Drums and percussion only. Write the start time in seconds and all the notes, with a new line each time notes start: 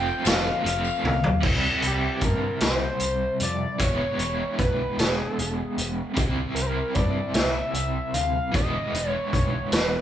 0.06 tambourine
0.25 snare, closed hi-hat, tambourine
0.66 closed hi-hat
0.84 tambourine
1.05 high tom
1.24 floor tom
1.43 kick, crash
1.82 closed hi-hat
2.21 kick, closed hi-hat
2.60 snare, closed hi-hat
3.00 closed hi-hat
3.40 closed hi-hat
3.80 kick, closed hi-hat
4.19 closed hi-hat
4.59 kick, closed hi-hat
4.99 snare, closed hi-hat
5.39 closed hi-hat
5.78 closed hi-hat
6.16 kick, closed hi-hat
6.56 closed hi-hat
6.95 kick, closed hi-hat
7.34 snare, closed hi-hat
7.74 closed hi-hat
8.14 closed hi-hat
8.54 kick, closed hi-hat
8.95 closed hi-hat
9.33 kick, closed hi-hat
9.72 snare, closed hi-hat